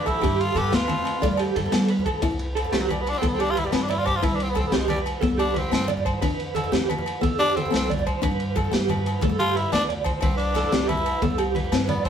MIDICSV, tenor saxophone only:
0, 0, Header, 1, 2, 480
1, 0, Start_track
1, 0, Key_signature, 0, "major"
1, 0, Tempo, 333148
1, 336, Time_signature, 12, 3, 24, 8
1, 17419, End_track
2, 0, Start_track
2, 0, Title_t, "Tenor saxophone"
2, 0, Program_c, 0, 66
2, 98, Note_on_c, 0, 64, 90
2, 586, Note_on_c, 0, 65, 88
2, 608, Note_off_c, 0, 64, 0
2, 834, Note_on_c, 0, 67, 83
2, 855, Note_off_c, 0, 65, 0
2, 1074, Note_on_c, 0, 65, 88
2, 1095, Note_off_c, 0, 67, 0
2, 2024, Note_off_c, 0, 65, 0
2, 3924, Note_on_c, 0, 57, 82
2, 4050, Note_on_c, 0, 54, 61
2, 4072, Note_off_c, 0, 57, 0
2, 4188, Note_on_c, 0, 55, 64
2, 4210, Note_off_c, 0, 54, 0
2, 4344, Note_on_c, 0, 59, 70
2, 4365, Note_off_c, 0, 55, 0
2, 4450, Note_on_c, 0, 62, 98
2, 4472, Note_off_c, 0, 59, 0
2, 4586, Note_on_c, 0, 60, 72
2, 4608, Note_off_c, 0, 62, 0
2, 4716, Note_on_c, 0, 59, 71
2, 4738, Note_off_c, 0, 60, 0
2, 4811, Note_on_c, 0, 60, 72
2, 4833, Note_off_c, 0, 59, 0
2, 4911, Note_on_c, 0, 62, 91
2, 4933, Note_off_c, 0, 60, 0
2, 5043, Note_on_c, 0, 65, 93
2, 5065, Note_off_c, 0, 62, 0
2, 5173, Note_on_c, 0, 64, 76
2, 5194, Note_off_c, 0, 65, 0
2, 5269, Note_on_c, 0, 55, 60
2, 5291, Note_off_c, 0, 64, 0
2, 5369, Note_on_c, 0, 59, 81
2, 5391, Note_off_c, 0, 55, 0
2, 5513, Note_on_c, 0, 62, 73
2, 5534, Note_off_c, 0, 59, 0
2, 5611, Note_on_c, 0, 64, 77
2, 5633, Note_off_c, 0, 62, 0
2, 5742, Note_on_c, 0, 65, 78
2, 5763, Note_off_c, 0, 64, 0
2, 5852, Note_on_c, 0, 67, 94
2, 5874, Note_off_c, 0, 65, 0
2, 5996, Note_on_c, 0, 65, 75
2, 6017, Note_off_c, 0, 67, 0
2, 6126, Note_on_c, 0, 64, 73
2, 6148, Note_off_c, 0, 65, 0
2, 6262, Note_on_c, 0, 62, 69
2, 6284, Note_off_c, 0, 64, 0
2, 6382, Note_on_c, 0, 60, 80
2, 6404, Note_off_c, 0, 62, 0
2, 6480, Note_on_c, 0, 59, 73
2, 6501, Note_off_c, 0, 60, 0
2, 6598, Note_on_c, 0, 60, 76
2, 6620, Note_off_c, 0, 59, 0
2, 6720, Note_on_c, 0, 59, 70
2, 6742, Note_off_c, 0, 60, 0
2, 6851, Note_on_c, 0, 57, 76
2, 6872, Note_off_c, 0, 59, 0
2, 6920, Note_on_c, 0, 56, 67
2, 6941, Note_off_c, 0, 57, 0
2, 7037, Note_off_c, 0, 56, 0
2, 7046, Note_on_c, 0, 55, 73
2, 7193, Note_off_c, 0, 55, 0
2, 7766, Note_on_c, 0, 62, 87
2, 8042, Note_on_c, 0, 60, 78
2, 8063, Note_off_c, 0, 62, 0
2, 8256, Note_off_c, 0, 60, 0
2, 8264, Note_on_c, 0, 60, 87
2, 8484, Note_off_c, 0, 60, 0
2, 10651, Note_on_c, 0, 62, 112
2, 10897, Note_on_c, 0, 60, 85
2, 10919, Note_off_c, 0, 62, 0
2, 11137, Note_off_c, 0, 60, 0
2, 11167, Note_on_c, 0, 60, 83
2, 11376, Note_off_c, 0, 60, 0
2, 13531, Note_on_c, 0, 65, 105
2, 13785, Note_on_c, 0, 64, 82
2, 13806, Note_off_c, 0, 65, 0
2, 14006, Note_off_c, 0, 64, 0
2, 14015, Note_on_c, 0, 62, 96
2, 14159, Note_off_c, 0, 62, 0
2, 14730, Note_on_c, 0, 60, 74
2, 14937, Note_off_c, 0, 60, 0
2, 14946, Note_on_c, 0, 62, 92
2, 15675, Note_on_c, 0, 64, 89
2, 15697, Note_off_c, 0, 62, 0
2, 16164, Note_off_c, 0, 64, 0
2, 17130, Note_on_c, 0, 59, 75
2, 17348, Note_on_c, 0, 60, 82
2, 17369, Note_off_c, 0, 59, 0
2, 17419, Note_off_c, 0, 60, 0
2, 17419, End_track
0, 0, End_of_file